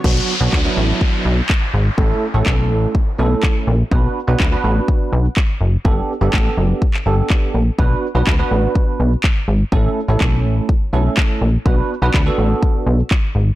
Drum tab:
CC |x---------------|----------------|----------------|----------------|
CP |----x-------x---|----x-------x---|----x-------x---|----x----x--x---|
BD |o---o---o---o---|o---o---o---o---|o---o---o---o---|o---o---o---o---|

CC |----------------|----------------|----------------|
CP |----x-------x---|----x-------x---|----x-------x---|
BD |o---o---o---o---|o---o---o---o---|o---o---o---o---|